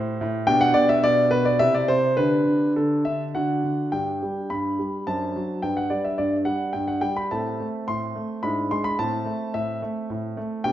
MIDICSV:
0, 0, Header, 1, 2, 480
1, 0, Start_track
1, 0, Key_signature, 1, "major"
1, 0, Tempo, 558140
1, 414, Time_signature, 3, 2, 24, 8
1, 1378, Tempo, 578592
1, 4258, Tempo, 557621
1, 9122, End_track
2, 0, Start_track
2, 0, Title_t, "Grand piano"
2, 0, Program_c, 0, 0
2, 0, Note_on_c, 0, 45, 79
2, 0, Note_on_c, 0, 57, 58
2, 0, Note_on_c, 0, 67, 57
2, 0, Note_on_c, 0, 72, 92
2, 168, Note_off_c, 0, 45, 0
2, 173, Note_off_c, 0, 72, 0
2, 181, Note_on_c, 0, 45, 82
2, 374, Note_off_c, 0, 57, 0
2, 375, Note_off_c, 0, 67, 0
2, 403, Note_on_c, 0, 79, 127
2, 405, Note_on_c, 0, 47, 85
2, 407, Note_on_c, 0, 62, 68
2, 408, Note_on_c, 0, 67, 64
2, 409, Note_off_c, 0, 45, 0
2, 523, Note_on_c, 0, 78, 119
2, 527, Note_off_c, 0, 79, 0
2, 625, Note_off_c, 0, 47, 0
2, 635, Note_on_c, 0, 74, 114
2, 638, Note_on_c, 0, 47, 76
2, 647, Note_off_c, 0, 78, 0
2, 763, Note_off_c, 0, 74, 0
2, 765, Note_on_c, 0, 76, 107
2, 877, Note_off_c, 0, 47, 0
2, 889, Note_off_c, 0, 76, 0
2, 891, Note_on_c, 0, 74, 121
2, 896, Note_on_c, 0, 47, 81
2, 1109, Note_off_c, 0, 74, 0
2, 1119, Note_off_c, 0, 47, 0
2, 1124, Note_on_c, 0, 71, 108
2, 1132, Note_on_c, 0, 47, 73
2, 1250, Note_on_c, 0, 74, 98
2, 1251, Note_off_c, 0, 71, 0
2, 1340, Note_off_c, 0, 62, 0
2, 1340, Note_off_c, 0, 67, 0
2, 1370, Note_off_c, 0, 47, 0
2, 1371, Note_on_c, 0, 76, 123
2, 1372, Note_on_c, 0, 64, 58
2, 1373, Note_on_c, 0, 67, 58
2, 1375, Note_off_c, 0, 74, 0
2, 1379, Note_on_c, 0, 48, 77
2, 1493, Note_off_c, 0, 76, 0
2, 1496, Note_on_c, 0, 74, 92
2, 1601, Note_off_c, 0, 48, 0
2, 1611, Note_on_c, 0, 72, 106
2, 1613, Note_on_c, 0, 48, 67
2, 1616, Note_off_c, 0, 74, 0
2, 1822, Note_off_c, 0, 64, 0
2, 1823, Note_off_c, 0, 67, 0
2, 1831, Note_off_c, 0, 72, 0
2, 1847, Note_on_c, 0, 71, 97
2, 1849, Note_off_c, 0, 48, 0
2, 1852, Note_on_c, 0, 67, 52
2, 1854, Note_on_c, 0, 62, 52
2, 1857, Note_on_c, 0, 50, 72
2, 2079, Note_off_c, 0, 50, 0
2, 2091, Note_on_c, 0, 50, 58
2, 2305, Note_off_c, 0, 71, 0
2, 2331, Note_off_c, 0, 50, 0
2, 2341, Note_on_c, 0, 69, 72
2, 2345, Note_on_c, 0, 50, 59
2, 2569, Note_off_c, 0, 50, 0
2, 2578, Note_on_c, 0, 76, 80
2, 2581, Note_on_c, 0, 50, 59
2, 2727, Note_off_c, 0, 76, 0
2, 2780, Note_off_c, 0, 69, 0
2, 2795, Note_off_c, 0, 67, 0
2, 2797, Note_off_c, 0, 62, 0
2, 2817, Note_off_c, 0, 50, 0
2, 2825, Note_on_c, 0, 78, 73
2, 2829, Note_on_c, 0, 50, 70
2, 2829, Note_on_c, 0, 66, 47
2, 2830, Note_on_c, 0, 62, 50
2, 3056, Note_off_c, 0, 50, 0
2, 3069, Note_on_c, 0, 50, 58
2, 3280, Note_off_c, 0, 62, 0
2, 3280, Note_off_c, 0, 66, 0
2, 3300, Note_on_c, 0, 79, 70
2, 3304, Note_off_c, 0, 50, 0
2, 3305, Note_on_c, 0, 62, 37
2, 3306, Note_on_c, 0, 43, 52
2, 3306, Note_on_c, 0, 67, 37
2, 3311, Note_off_c, 0, 78, 0
2, 3540, Note_off_c, 0, 43, 0
2, 3555, Note_on_c, 0, 55, 43
2, 3781, Note_off_c, 0, 79, 0
2, 3782, Note_off_c, 0, 55, 0
2, 3782, Note_on_c, 0, 83, 76
2, 3788, Note_on_c, 0, 43, 47
2, 4016, Note_off_c, 0, 43, 0
2, 4024, Note_on_c, 0, 55, 49
2, 4220, Note_off_c, 0, 62, 0
2, 4221, Note_off_c, 0, 67, 0
2, 4222, Note_off_c, 0, 83, 0
2, 4251, Note_off_c, 0, 55, 0
2, 4253, Note_on_c, 0, 62, 38
2, 4254, Note_on_c, 0, 72, 41
2, 4254, Note_on_c, 0, 81, 83
2, 4257, Note_on_c, 0, 42, 54
2, 4492, Note_off_c, 0, 42, 0
2, 4504, Note_on_c, 0, 54, 51
2, 4703, Note_off_c, 0, 62, 0
2, 4704, Note_off_c, 0, 72, 0
2, 4732, Note_on_c, 0, 79, 78
2, 4734, Note_off_c, 0, 54, 0
2, 4734, Note_on_c, 0, 43, 55
2, 4736, Note_on_c, 0, 62, 39
2, 4736, Note_on_c, 0, 71, 38
2, 4738, Note_off_c, 0, 81, 0
2, 4855, Note_off_c, 0, 79, 0
2, 4855, Note_on_c, 0, 78, 71
2, 4968, Note_off_c, 0, 43, 0
2, 4969, Note_on_c, 0, 74, 68
2, 4974, Note_on_c, 0, 55, 45
2, 4977, Note_off_c, 0, 78, 0
2, 5094, Note_off_c, 0, 74, 0
2, 5094, Note_on_c, 0, 76, 66
2, 5209, Note_off_c, 0, 55, 0
2, 5210, Note_on_c, 0, 74, 75
2, 5215, Note_on_c, 0, 43, 53
2, 5216, Note_off_c, 0, 76, 0
2, 5358, Note_off_c, 0, 74, 0
2, 5443, Note_on_c, 0, 78, 78
2, 5448, Note_on_c, 0, 55, 52
2, 5451, Note_off_c, 0, 43, 0
2, 5668, Note_off_c, 0, 78, 0
2, 5682, Note_on_c, 0, 79, 72
2, 5688, Note_off_c, 0, 55, 0
2, 5691, Note_on_c, 0, 43, 51
2, 5809, Note_on_c, 0, 78, 69
2, 5813, Note_off_c, 0, 79, 0
2, 5927, Note_on_c, 0, 79, 84
2, 5930, Note_off_c, 0, 43, 0
2, 5932, Note_on_c, 0, 55, 51
2, 5937, Note_off_c, 0, 78, 0
2, 6056, Note_off_c, 0, 79, 0
2, 6058, Note_on_c, 0, 83, 81
2, 6149, Note_off_c, 0, 62, 0
2, 6149, Note_off_c, 0, 71, 0
2, 6173, Note_off_c, 0, 55, 0
2, 6182, Note_off_c, 0, 83, 0
2, 6184, Note_on_c, 0, 81, 79
2, 6186, Note_on_c, 0, 60, 42
2, 6189, Note_on_c, 0, 45, 57
2, 6192, Note_on_c, 0, 69, 41
2, 6423, Note_off_c, 0, 45, 0
2, 6435, Note_on_c, 0, 57, 51
2, 6474, Note_off_c, 0, 81, 0
2, 6665, Note_off_c, 0, 57, 0
2, 6671, Note_on_c, 0, 84, 91
2, 6676, Note_on_c, 0, 45, 56
2, 6905, Note_off_c, 0, 45, 0
2, 6911, Note_on_c, 0, 57, 53
2, 7113, Note_off_c, 0, 60, 0
2, 7114, Note_off_c, 0, 84, 0
2, 7116, Note_off_c, 0, 69, 0
2, 7142, Note_off_c, 0, 57, 0
2, 7145, Note_on_c, 0, 83, 86
2, 7146, Note_on_c, 0, 64, 46
2, 7147, Note_on_c, 0, 62, 43
2, 7150, Note_on_c, 0, 44, 66
2, 7381, Note_off_c, 0, 44, 0
2, 7385, Note_off_c, 0, 83, 0
2, 7389, Note_on_c, 0, 84, 89
2, 7394, Note_on_c, 0, 56, 57
2, 7502, Note_on_c, 0, 83, 93
2, 7507, Note_off_c, 0, 84, 0
2, 7592, Note_off_c, 0, 62, 0
2, 7592, Note_off_c, 0, 64, 0
2, 7622, Note_off_c, 0, 56, 0
2, 7624, Note_off_c, 0, 83, 0
2, 7627, Note_on_c, 0, 64, 46
2, 7628, Note_on_c, 0, 45, 65
2, 7628, Note_on_c, 0, 81, 91
2, 7632, Note_on_c, 0, 60, 45
2, 7858, Note_off_c, 0, 45, 0
2, 7859, Note_on_c, 0, 57, 60
2, 8092, Note_off_c, 0, 57, 0
2, 8103, Note_off_c, 0, 81, 0
2, 8103, Note_on_c, 0, 76, 88
2, 8107, Note_on_c, 0, 45, 58
2, 8318, Note_off_c, 0, 76, 0
2, 8336, Note_off_c, 0, 45, 0
2, 8346, Note_on_c, 0, 57, 60
2, 8575, Note_off_c, 0, 57, 0
2, 8584, Note_on_c, 0, 45, 62
2, 8813, Note_off_c, 0, 45, 0
2, 8819, Note_on_c, 0, 57, 65
2, 9025, Note_off_c, 0, 64, 0
2, 9027, Note_off_c, 0, 60, 0
2, 9051, Note_off_c, 0, 57, 0
2, 9051, Note_on_c, 0, 79, 103
2, 9058, Note_on_c, 0, 47, 71
2, 9058, Note_on_c, 0, 62, 49
2, 9061, Note_on_c, 0, 67, 53
2, 9122, Note_off_c, 0, 47, 0
2, 9122, Note_off_c, 0, 62, 0
2, 9122, Note_off_c, 0, 67, 0
2, 9122, Note_off_c, 0, 79, 0
2, 9122, End_track
0, 0, End_of_file